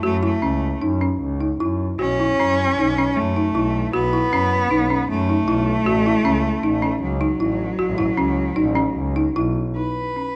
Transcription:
0.03 double bass F#2, cello A3, marimba F#4
0.23 cello A3, marimba E4
0.42 double bass C#2, marimba C#4
0.81 double bass F#2, marimba D#4
1.01 marimba C#4
1.22 double bass C#2
1.41 marimba D#4
1.60 double bass F#2, marimba E4
1.99 double bass B1, cello C#4, marimba F#4
2.20 marimba E4
2.39 double bass F#2, marimba C#4
2.79 double bass B1, marimba D#4
2.98 marimba C#4
3.16 double bass F#2, cello A3
3.36 marimba D#4
3.55 double bass B1, marimba E4
3.93 double bass B1, cello B3, marimba F#4
4.13 marimba E4
4.32 double bass F#2, marimba C#4
4.70 double bass B1, marimba D#4
4.90 marimba C#4
5.09 double bass F#2, cello A3
5.29 marimba D#4
5.47 double bass B1, marimba E4
5.86 double bass A1, marimba F#4
6.06 marimba E4
6.25 double bass C#2, marimba C#4
6.64 double bass A1, marimba D#4
6.83 marimba C#4
7.02 double bass C#2, cello F#3
7.21 marimba D#4
7.40 double bass A1, marimba E4
7.79 double bass A1, marimba F#4
7.98 marimba E4
8.18 double bass C#2, marimba C#4
8.56 double bass A1, marimba D#4
8.75 marimba C#4
8.97 double bass C#2
9.16 marimba D#4
9.36 double bass B1, marimba E4
9.77 marimba D#4, cello B4
10.17 marimba C#4

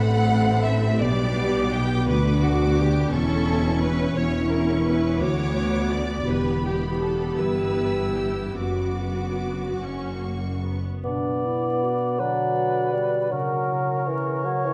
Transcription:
Already playing: double bass section A1, cello section A2, harp A2 D4 D5, french horn section A3, viola section C4 A4, violin section F#5 B5
0.30 harp C4
0.64 harp D4 D5, violin section E5
1.00 double bass section B1, cello section B2, harp B2, french horn section G3, viola section B3 G4, violin section D5 D6
1.38 harp B3
1.73 harp D5, violin section G5
2.07 cello section D2, double bass section D2, harp D3, viola section B3 F#4, french horn section D4, violin section B4 D6
2.42 harp B3, violin section F#4
2.77 harp F#4 D5, violin section G4
3.11 double bass section E1, cello section E2, harp E3, viola section C#4 E4, french horn section C#4, violin section A4 C#6
3.48 harp C#4
3.81 harp G4 C#5, violin section B4
4.15 double bass section E1, cello section E2, harp E3, viola section C#4 E4, french horn section E4, violin section C#5 C#6
4.51 harp C#4, violin section A#4
4.87 harp F#4 A#4, violin section B4
5.21 double bass section D2, cello section D2, harp D3, viola section B3 F#4, french horn section F#4, violin section C#5 D6
5.57 harp B3
5.92 harp F#4 B4, violin section D5
6.25 double bass section E1, cello section E2, harp E3, viola section B3 G4, french horn section G4, violin section B4 B5
6.65 harp B3, violin section G4
7.01 harp G4, violin section A4
7.38 double bass section G1, cello section G2, viola section E4, violin section B4 E6
8.16 harp B3, violin section G4
8.58 double bass section F#1, harp F#2, cello section F#2, viola section B3 F#4, violin section F#4 D6, french horn section F#4
9.00 harp D4
9.40 harp F#4 B4
9.80 double bass section F#1, cello section F#2, harp F#2, viola section C#4, violin section C#6
10.21 viola section A#3, harp C#4
10.63 viola section B3, harp F#4 A#4
11.04 harp B2, bassoon B3, french horn section B3, clarinet D4, cor anglais D5
11.45 harp D4, clarinet E4
11.83 clarinet F#4, harp B4
12.19 french horn section D3, bassoon F#3, cor anglais B4, flute D5, harp D5
12.58 harp F#4
12.93 bassoon G3, harp D4
13.30 harp C#3, french horn section C#3, bassoon F#3, flute A#4, clarinet A#4, cor anglais C#5
13.70 harp E4
14.07 bassoon E3, harp A#4
14.45 bassoon F#3, flute C#5, harp E5
14.65 bassoon E3

